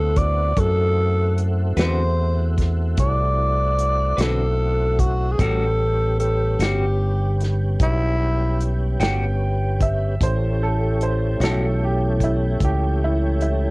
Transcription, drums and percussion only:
0.16 kick medium
0.16 closed hi-hat medium
0.57 kick loud
0.57 closed hi-hat medium
1.38 closed hi-hat medium
1.77 snare medium
1.77 closed hi-hat medium
2.58 kick medium
2.58 snare soft
2.58 closed hi-hat medium
2.97 kick loud
2.97 closed hi-hat medium
3.78 closed hi-hat medium
4.18 snare medium
4.18 closed hi-hat medium
4.99 kick medium
4.99 closed hi-hat medium
5.39 kick medium
5.39 closed hi-hat medium
6.20 closed hi-hat medium
6.60 snare medium
6.60 closed hi-hat medium
7.40 snare soft
7.40 closed hi-hat soft
7.80 kick loud
7.80 closed hi-hat medium
8.60 closed hi-hat medium
9.00 snare medium
9.00 closed hi-hat medium
9.80 kick medium
9.80 closed hi-hat medium
10.21 kick medium
10.21 closed hi-hat medium
11.01 closed hi-hat medium
11.41 snare medium
11.41 closed hi-hat medium
12.20 kick medium
12.20 closed hi-hat medium
12.60 kick medium
12.60 closed hi-hat medium
13.41 closed hi-hat soft

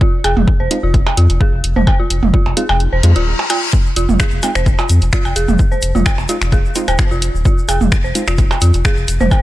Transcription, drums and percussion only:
0.01 kick loud
0.24 closed hi-hat medium
0.24 percussion blips medium
0.37 mid tom medium
0.48 kick loud
0.71 closed hi-hat medium
0.94 kick loud
0.94 closed hi-hat soft
1.07 percussion blips medium
1.17 closed hi-hat medium
1.30 closed hi-hat soft
1.41 kick loud
1.64 closed hi-hat medium
1.76 mid tom medium
1.87 kick loud
1.87 percussion blips medium
2.10 closed hi-hat medium
2.23 mid tom medium
2.34 kick loud
2.46 percussion blips soft
2.57 closed hi-hat medium
2.69 percussion blips medium
2.80 closed hi-hat soft
3.03 closed hi-hat medium
3.16 closed hi-hat soft
3.39 percussion blips soft
3.50 closed hi-hat medium
3.50 percussion blips medium
3.73 kick loud
3.73 shaker medium
3.86 shaker soft
3.96 closed hi-hat medium
3.96 shaker medium
4.09 mid tom medium
4.09 shaker soft
4.20 finger snap medium
4.20 kick loud
4.20 shaker medium
4.31 shaker soft
4.43 closed hi-hat medium
4.43 percussion blips medium
4.43 shaker medium
4.55 finger snap medium
4.55 shaker soft
4.66 kick loud
4.66 closed hi-hat soft
4.66 shaker medium
4.78 percussion blips medium
4.78 shaker soft
4.89 closed hi-hat medium
4.89 shaker medium
5.02 closed hi-hat soft
5.02 shaker soft
5.12 finger snap medium
5.12 kick loud
5.12 shaker soft
5.25 percussion blips medium
5.25 shaker soft
5.36 closed hi-hat medium
5.36 shaker medium
5.48 mid tom medium
5.48 shaker soft
5.59 kick loud
5.59 shaker medium
5.72 shaker soft
5.82 closed hi-hat medium
5.82 shaker medium
5.95 mid tom medium
5.95 shaker soft
6.06 finger snap medium
6.06 kick loud
6.06 percussion blips medium
6.06 shaker soft
6.18 percussion blips medium
6.18 shaker soft
6.29 closed hi-hat medium
6.29 shaker medium
6.42 finger snap medium
6.42 shaker soft
6.52 kick loud
6.52 closed hi-hat soft
6.52 shaker medium
6.65 shaker soft
6.75 closed hi-hat medium
6.75 shaker medium
6.88 closed hi-hat soft
6.88 percussion blips medium
6.88 shaker soft
6.98 finger snap medium
6.98 kick loud
6.98 shaker soft
7.11 shaker soft
7.22 closed hi-hat medium
7.22 shaker medium
7.35 shaker soft
7.45 kick loud
7.45 shaker medium
7.58 shaker soft
7.69 closed hi-hat medium
7.69 percussion blips medium
7.69 shaker loud
7.81 mid tom medium
7.81 shaker soft
7.92 finger snap medium
7.92 kick loud
7.92 shaker soft
8.05 shaker soft
8.15 closed hi-hat medium
8.15 shaker loud
8.27 finger snap medium
8.27 shaker soft
8.38 kick loud
8.38 closed hi-hat soft
8.38 shaker medium
8.51 percussion blips medium
8.51 shaker soft
8.61 closed hi-hat loud
8.61 shaker medium
8.74 closed hi-hat soft
8.74 shaker soft
8.85 finger snap medium
8.85 kick loud
8.85 shaker medium
8.97 shaker soft
9.08 closed hi-hat medium
9.08 shaker medium
9.20 mid tom medium
9.20 shaker soft
9.31 kick loud
9.31 percussion blips medium
9.31 shaker medium

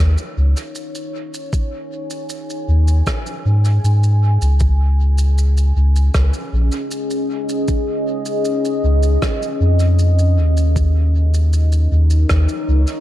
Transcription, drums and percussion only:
0.18 shaker soft
0.57 shaker medium
0.75 shaker medium
0.95 shaker soft
1.34 shaker medium
1.53 kick loud
1.53 shaker medium
2.10 shaker medium
2.30 shaker medium
2.50 shaker soft
2.88 shaker medium
3.07 kick loud
3.07 cross-stick medium
3.07 shaker medium
3.26 shaker soft
3.65 shaker soft
3.85 shaker medium
4.03 shaker soft
4.42 shaker medium
4.60 kick loud
4.60 shaker medium
5.18 shaker medium
5.38 shaker medium
5.57 shaker soft
5.96 shaker medium
6.14 kick loud
6.14 cross-stick medium
6.14 shaker medium
6.34 shaker soft
6.72 shaker medium
6.91 shaker medium
7.11 shaker soft
7.49 shaker medium
7.68 kick loud
7.68 shaker medium
8.26 shaker medium
8.45 shaker medium
8.65 shaker soft
9.03 shaker medium
9.22 kick loud
9.22 cross-stick medium
9.22 shaker medium
9.43 shaker soft
9.79 shaker medium
9.99 shaker medium
10.19 shaker soft
10.57 shaker medium
10.76 kick medium
10.76 shaker medium
11.34 shaker medium
11.53 shaker medium
11.72 shaker soft
12.10 shaker medium
12.30 kick loud
12.30 cross-stick medium
12.30 shaker medium
12.49 shaker soft
12.87 shaker medium

